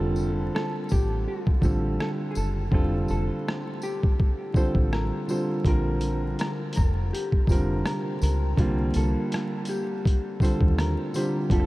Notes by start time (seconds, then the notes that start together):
Already playing: F1 D3 G3 C4 F4 A4
0.16 tambourine
0.55 A4, cross-stick
0.89 A1 G4, kick, cross-stick, tambourine
1.28 F4
1.47 kick
1.61 A1 D3 G3 C4 F4 A4, kick, tambourine
2.00 A4, cross-stick
2.31 G#4
2.35 F#1 A4, tambourine
2.71 F1 D3 G3 C4 F4 A4, kick
3.08 F1 A4, tambourine
3.48 cross-stick
3.82 G4, tambourine
4.03 kick
4.20 kick
4.54 D3 G3 C4 F4 A4 C5, kick, tambourine
4.75 A1, kick
4.93 A#4, cross-stick
5.27 D3 G3 C4 F4 A4 C5, tambourine
5.65 A#1 D3 G3 C4 F4 A#4, kick, closed hi-hat
6.01 closed hi-hat, tambourine
6.39 A#4, cross-stick, closed hi-hat
6.73 A4, closed hi-hat, tambourine
6.77 F1, kick, cross-stick
7.13 G4, closed hi-hat
7.32 kick
7.47 F1 C3 G3 C4 F4 A#4, kick, tambourine
7.52 D3, closed hi-hat
7.86 A#4, cross-stick, closed hi-hat
8.22 C#2 A#4, closed hi-hat, tambourine
8.57 C2 D3 G3 A#3 C4 F4, kick, closed hi-hat
8.94 C2 A4, closed hi-hat, tambourine
9.32 cross-stick, closed hi-hat
9.65 closed hi-hat, tambourine
9.69 G4
10.05 kick, closed hi-hat
10.40 D3 G3 C4 F4 A4 C5, kick, tambourine
10.45 closed hi-hat
10.60 D#2, kick
10.78 A#4, cross-stick, closed hi-hat
11.14 D3 G3 C4 F4 G4 C5, closed hi-hat, tambourine
11.50 F1 D3 G3 C4 F4 G4 A4, kick, closed hi-hat
11.60 A4